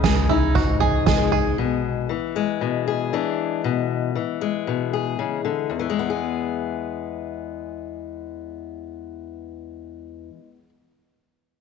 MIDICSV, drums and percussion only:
0, 0, Header, 1, 2, 480
1, 0, Start_track
1, 0, Key_signature, 4, "major"
1, 0, Tempo, 514580
1, 1473, Time_signature, 4, 2, 24, 8
1, 10826, End_track
2, 0, Start_track
2, 0, Title_t, "Drums"
2, 37, Note_on_c, 9, 38, 97
2, 37, Note_on_c, 9, 43, 74
2, 40, Note_on_c, 9, 36, 91
2, 130, Note_off_c, 9, 38, 0
2, 130, Note_off_c, 9, 43, 0
2, 133, Note_off_c, 9, 36, 0
2, 279, Note_on_c, 9, 43, 70
2, 373, Note_off_c, 9, 43, 0
2, 514, Note_on_c, 9, 43, 79
2, 519, Note_on_c, 9, 36, 98
2, 608, Note_off_c, 9, 43, 0
2, 612, Note_off_c, 9, 36, 0
2, 757, Note_on_c, 9, 43, 73
2, 850, Note_off_c, 9, 43, 0
2, 996, Note_on_c, 9, 38, 102
2, 996, Note_on_c, 9, 43, 70
2, 998, Note_on_c, 9, 36, 100
2, 1090, Note_off_c, 9, 38, 0
2, 1090, Note_off_c, 9, 43, 0
2, 1091, Note_off_c, 9, 36, 0
2, 1239, Note_on_c, 9, 43, 70
2, 1332, Note_off_c, 9, 43, 0
2, 10826, End_track
0, 0, End_of_file